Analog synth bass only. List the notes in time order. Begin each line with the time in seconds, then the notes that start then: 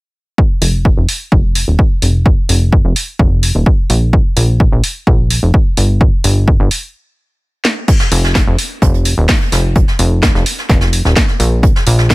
0.62 F1
0.97 F1
1.32 F1
1.68 D#1
2.02 F1
2.49 F1
2.85 F1
3.19 F1
3.55 D#1
3.90 A#1
4.37 A#1
4.72 A#1
5.07 A#1
5.43 F1
5.77 G1
6.24 G1
6.60 G1
8.12 F1
8.47 F1
8.82 F1
9.18 D#1
9.52 F1
9.99 F1
10.35 F1
10.69 F1
11.05 D#1
11.40 A#1
11.87 A#1